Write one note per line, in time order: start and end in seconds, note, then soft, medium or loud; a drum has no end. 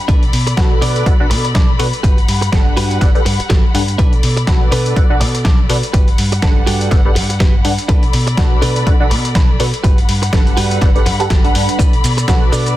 0.00 7.85 B5 medium
0.08 0.29 B1 medium
0.08 0.22 D4 loud
0.08 2.02 A4 medium
0.08 0.23 A4 loud
0.08 0.23 B4 loud
0.08 2.02 D5 medium
0.08 kick loud
0.08 closed hi-hat medium
0.23 closed hi-hat soft
0.33 0.53 B2 medium
0.33 muted clean electric guitar stroke soft
0.33 open hi-hat loud
0.47 muted clean electric guitar stroke medium
0.47 closed hi-hat medium
0.57 0.78 B1 medium
0.57 1.03 D4 loud
0.57 1.04 F#4 medium
0.57 1.04 A4 medium
0.57 1.04 B4 medium
0.57 1.04 F#5 loud
0.57 muted clean electric guitar stroke soft
0.57 kick loud
0.57 snare loud
0.57 closed hi-hat medium
0.71 muted clean electric guitar stroke soft
0.82 1.02 B2 loud
0.82 1.06 D4 medium
0.82 1.06 A4 medium
0.82 1.07 D5 loud
0.82 open hi-hat loud
0.96 closed hi-hat medium
1.06 1.32 B1 medium
1.06 1.14 D4 medium
1.06 1.14 F#4 medium
1.06 1.14 A4 medium
1.06 1.14 B4 medium
1.06 1.14 F#5 loud
1.06 kick loud
1.06 closed hi-hat medium
1.20 1.26 D4 medium
1.20 1.26 F#4 medium
1.20 1.26 A4 medium
1.20 1.26 B4 medium
1.20 1.26 F#5 loud
1.30 1.57 B2 medium
1.30 muted clean electric guitar stroke loud
1.30 open hi-hat loud
1.44 muted clean electric guitar stroke soft
1.44 closed hi-hat medium
1.55 1.75 B1 loud
1.55 1.69 D4 medium
1.55 1.69 A4 medium
1.55 1.69 D5 medium
1.55 kick loud
1.55 snare loud
1.55 closed hi-hat medium
1.79 1.91 B2 medium
1.79 1.87 D4 medium
1.79 1.87 F#4 medium
1.79 1.87 A4 medium
1.79 1.87 B4 medium
1.79 1.87 F#5 medium
1.79 muted clean electric guitar stroke soft
1.79 open hi-hat loud
1.93 closed hi-hat medium
2.03 2.24 G1 medium
2.03 3.97 G3 medium
2.03 2.17 F#4 loud
2.03 2.18 G4 medium
2.03 2.18 B4 loud
2.03 3.97 F#5 medium
2.03 kick loud
2.03 closed hi-hat medium
2.18 closed hi-hat soft
2.28 2.49 G2 medium
2.28 muted clean electric guitar stroke soft
2.28 open hi-hat loud
2.41 muted clean electric guitar stroke medium
2.41 closed hi-hat medium
2.52 2.73 G1 medium
2.52 2.99 G3 medium
2.52 2.99 D4 loud
2.52 2.99 A4 medium
2.52 2.99 B4 medium
2.52 2.99 F#5 loud
2.52 muted clean electric guitar stroke soft
2.52 kick loud
2.52 snare loud
2.52 closed hi-hat medium
2.66 muted clean electric guitar stroke soft
2.77 2.97 G2 loud
2.77 3.01 F#4 medium
2.77 3.01 G4 medium
2.77 3.02 B4 loud
2.77 open hi-hat loud
2.91 closed hi-hat medium
3.01 3.13 G1 loud
3.01 3.09 D4 medium
3.01 3.09 G4 medium
3.01 3.09 A4 medium
3.01 3.09 B4 medium
3.01 3.09 F#5 loud
3.01 kick loud
3.01 snare medium
3.01 closed hi-hat medium
3.15 3.21 D4 medium
3.15 3.21 G4 medium
3.15 3.21 A4 medium
3.15 3.21 B4 medium
3.15 3.21 F#5 medium
3.15 closed hi-hat soft
3.25 3.37 G2 medium
3.25 muted clean electric guitar stroke loud
3.25 open hi-hat loud
3.39 muted clean electric guitar stroke soft
3.39 muted fingered electric bass stroke soft
3.39 closed hi-hat soft
3.50 3.61 G1 medium
3.50 3.64 F#4 medium
3.50 3.64 G4 medium
3.50 3.64 A4 medium
3.50 kick loud
3.50 snare loud
3.50 closed hi-hat medium
3.74 3.95 G2 medium
3.74 3.82 D4 medium
3.74 3.82 G4 medium
3.74 3.82 A4 medium
3.74 3.82 B4 medium
3.74 3.82 F#5 medium
3.74 muted clean electric guitar stroke soft
3.74 open hi-hat loud
3.88 closed hi-hat soft
3.98 4.19 B1 medium
3.98 4.12 D4 loud
3.98 5.92 A4 medium
3.98 4.13 A4 medium
3.98 4.13 B4 loud
3.98 5.92 D5 medium
3.98 kick loud
3.98 closed hi-hat medium
4.13 closed hi-hat soft
4.23 4.44 B2 medium
4.23 muted clean electric guitar stroke soft
4.23 open hi-hat loud
4.37 muted clean electric guitar stroke medium
4.37 closed hi-hat medium
4.47 4.68 B1 medium
4.47 4.94 D4 loud
4.47 4.94 F#4 medium
4.47 4.94 A4 medium
4.47 4.94 B4 medium
4.47 4.94 F#5 loud
4.47 muted clean electric guitar stroke soft
4.47 kick loud
4.47 snare loud
4.47 closed hi-hat medium
4.61 muted clean electric guitar stroke soft
4.71 4.92 B2 loud
4.71 4.96 D4 medium
4.71 4.96 A4 medium
4.71 4.97 B4 loud
4.71 open hi-hat loud
4.86 closed hi-hat soft
4.96 5.22 B1 medium
4.96 5.04 D4 medium
4.96 5.04 F#4 medium
4.96 5.04 A4 medium
4.96 5.04 B4 medium
4.96 5.04 F#5 loud
4.96 kick loud
4.96 closed hi-hat medium
5.10 5.16 D4 medium
5.10 5.16 F#4 medium
5.10 5.16 A4 medium
5.10 5.16 B4 medium
5.10 5.16 F#5 loud
5.20 5.47 B2 medium
5.20 muted clean electric guitar stroke loud
5.20 open hi-hat loud
5.34 muted clean electric guitar stroke soft
5.34 closed hi-hat soft
5.45 5.66 B1 medium
5.45 5.59 D4 medium
5.45 5.59 A4 medium
5.45 5.59 D5 medium
5.45 kick loud
5.45 snare loud
5.45 closed hi-hat medium
5.69 5.81 B2 medium
5.69 5.77 D4 medium
5.69 5.77 F#4 medium
5.69 5.77 A4 medium
5.69 5.77 B4 medium
5.69 5.77 F#5 medium
5.69 muted clean electric guitar stroke soft
5.69 open hi-hat loud
5.83 closed hi-hat medium
5.93 6.14 G1 loud
5.93 7.87 G3 medium
5.93 6.08 F#4 loud
5.93 6.08 G4 medium
5.93 6.08 B4 loud
5.93 7.87 F#5 medium
5.93 kick loud
5.93 closed hi-hat medium
6.08 closed hi-hat soft
6.18 6.39 G2 medium
6.18 muted clean electric guitar stroke soft
6.18 open hi-hat loud
6.32 muted clean electric guitar stroke medium
6.32 closed hi-hat medium
6.42 6.63 G1 medium
6.42 6.89 G3 medium
6.42 6.89 D4 loud
6.42 6.89 A4 medium
6.42 6.89 B4 medium
6.42 6.89 F#5 loud
6.42 muted clean electric guitar stroke soft
6.42 kick loud
6.42 snare loud
6.42 closed hi-hat medium
6.56 muted clean electric guitar stroke soft
6.66 6.88 G2 loud
6.66 6.91 F#4 medium
6.66 6.91 G4 medium
6.66 6.92 A4 loud
6.66 open hi-hat loud
6.81 closed hi-hat medium
6.91 7.18 G1 loud
6.91 6.99 D4 medium
6.91 6.99 G4 medium
6.91 6.99 A4 medium
6.91 6.99 B4 medium
6.91 6.99 F#5 loud
6.91 kick loud
6.91 snare medium
6.91 closed hi-hat medium
7.05 7.11 D4 medium
7.05 7.11 G4 medium
7.05 7.11 A4 medium
7.05 7.11 B4 medium
7.05 7.11 F#5 loud
7.15 7.42 G2 medium
7.15 muted clean electric guitar stroke loud
7.15 open hi-hat loud
7.29 muted clean electric guitar stroke soft
7.29 closed hi-hat medium
7.40 7.61 G1 loud
7.40 7.54 F#4 medium
7.40 7.54 G4 medium
7.40 7.54 B4 medium
7.40 kick loud
7.40 snare loud
7.40 closed hi-hat medium
7.64 7.76 G2 medium
7.64 7.72 D4 medium
7.64 7.72 G4 medium
7.64 7.72 A4 medium
7.64 7.72 B4 medium
7.64 7.72 F#5 medium
7.64 muted clean electric guitar stroke soft
7.64 open hi-hat loud
7.78 closed hi-hat medium
7.88 8.10 B1 medium
7.88 8.03 D4 loud
7.88 8.03 A4 loud
7.88 9.82 A4 medium
7.88 8.03 B4 loud
7.88 9.82 D5 medium
7.88 9.82 B5 medium
7.88 kick loud
7.88 closed hi-hat medium
8.03 closed hi-hat soft
8.13 8.34 B2 medium
8.13 muted clean electric guitar stroke soft
8.13 open hi-hat loud
8.27 muted clean electric guitar stroke medium
8.27 closed hi-hat medium
8.37 8.58 B1 medium
8.37 8.84 D4 loud
8.37 8.84 F#4 medium
8.37 8.84 A4 medium
8.37 8.84 B4 medium
8.37 8.85 F#5 loud
8.37 muted clean electric guitar stroke soft
8.37 kick loud
8.37 snare loud
8.37 closed hi-hat medium
8.51 muted clean electric guitar stroke soft
8.62 8.83 B2 loud
8.62 8.86 D4 medium
8.62 8.87 A4 medium
8.62 8.87 B4 medium
8.62 open hi-hat loud
8.76 closed hi-hat medium
8.86 9.13 B1 medium
8.86 8.94 D4 medium
8.86 8.94 F#4 medium
8.86 8.94 A4 medium
8.86 8.94 B4 medium
8.86 8.94 F#5 medium
8.86 kick loud
8.86 closed hi-hat medium
9.00 9.06 D4 medium
9.00 9.06 F#4 medium
9.00 9.06 A4 medium
9.00 9.06 B4 medium
9.00 9.06 F#5 loud
9.10 9.37 B2 medium
9.10 muted clean electric guitar stroke loud
9.10 open hi-hat loud
9.24 muted clean electric guitar stroke soft
9.24 closed hi-hat medium
9.35 9.56 B1 loud
9.35 9.49 D4 medium
9.35 9.49 A4 medium
9.35 9.50 B4 medium
9.35 kick loud
9.35 snare loud
9.35 closed hi-hat medium
9.59 9.71 B2 medium
9.59 9.67 D4 medium
9.59 9.67 F#4 medium
9.59 9.67 A4 medium
9.59 9.67 B4 medium
9.59 9.68 F#5 medium
9.59 muted clean electric guitar stroke soft
9.59 open hi-hat loud
9.74 closed hi-hat medium
9.83 10.05 G1 medium
9.83 11.77 G3 medium
9.83 9.98 F#4 loud
9.83 9.98 G4 loud
9.83 9.98 B4 loud
9.83 11.77 F#5 medium
9.83 12.77 B5 medium
9.83 kick loud
9.83 closed hi-hat medium
9.98 closed hi-hat soft
10.08 10.29 G2 medium
10.08 muted clean electric guitar stroke soft
10.08 open hi-hat loud
10.22 muted clean electric guitar stroke medium
10.22 closed hi-hat medium
10.33 10.53 G1 medium
10.33 10.79 G3 medium
10.33 10.79 D4 loud
10.33 10.79 A4 medium
10.33 10.79 B4 medium
10.33 10.79 F#5 loud
10.33 muted clean electric guitar stroke soft
10.33 kick loud
10.33 snare loud
10.33 closed hi-hat medium
10.46 muted clean electric guitar stroke soft
10.46 closed hi-hat soft
10.57 10.78 G2 loud
10.57 10.82 F#4 medium
10.57 10.82 G4 medium
10.57 10.82 B4 loud
10.57 open hi-hat loud
10.71 closed hi-hat medium
10.81 11.08 G1 medium
10.81 10.89 D4 medium
10.81 10.89 G4 medium
10.81 10.89 A4 medium
10.81 10.89 B4 medium
10.81 10.89 F#5 loud
10.81 kick loud
10.81 snare medium
10.81 closed hi-hat medium
10.95 11.01 D4 medium
10.95 11.01 G4 medium
10.95 11.01 A4 medium
10.95 11.01 B4 medium
10.95 11.02 F#5 loud
10.95 closed hi-hat soft
11.06 11.27 G2 loud
11.06 muted clean electric guitar stroke loud
11.06 open hi-hat loud
11.20 11.29 D4 medium
11.20 11.29 G4 medium
11.20 11.29 A4 medium
11.20 11.29 B4 medium
11.20 11.29 F#5 medium
11.20 muted clean electric guitar stroke soft
11.20 closed hi-hat medium
11.30 11.51 G1 medium
11.30 11.44 F#4 medium
11.30 11.44 G4 medium
11.30 11.45 A4 medium
11.30 kick loud
11.30 snare loud
11.30 closed hi-hat medium
11.44 11.78 G3 medium
11.44 11.78 D4 loud
11.44 11.78 A4 medium
11.44 11.78 B4 medium
11.44 11.78 F#5 loud
11.44 closed hi-hat soft
11.55 11.66 G2 loud
11.55 muted clean electric guitar stroke soft
11.55 open hi-hat loud
11.69 closed hi-hat medium
11.79 12.00 B1 medium
11.79 11.93 D4 loud
11.79 12.77 A4 medium
11.79 11.93 A4 loud
11.79 11.93 B4 loud
11.79 12.77 D5 medium
11.79 kick loud
11.79 closed hi-hat medium
11.79 shaker soft
11.93 closed hi-hat soft
12.03 12.24 B2 medium
12.03 muted clean electric guitar stroke soft
12.03 open hi-hat loud
12.03 shaker medium
12.17 muted clean electric guitar stroke medium
12.17 closed hi-hat medium
12.17 shaker soft
12.28 12.49 B1 medium
12.28 12.74 D4 loud
12.28 12.74 F#4 medium
12.28 12.74 A4 medium
12.28 12.75 B4 medium
12.28 12.75 F#5 loud
12.28 muted clean electric guitar stroke soft
12.28 kick loud
12.28 snare loud
12.28 closed hi-hat medium
12.28 shaker soft
12.42 muted clean electric guitar stroke soft
12.52 12.73 B2 loud
12.52 12.77 D4 medium
12.52 12.77 A4 medium
12.52 12.77 D5 medium
12.52 open hi-hat loud
12.52 shaker medium
12.66 closed hi-hat medium
12.66 shaker soft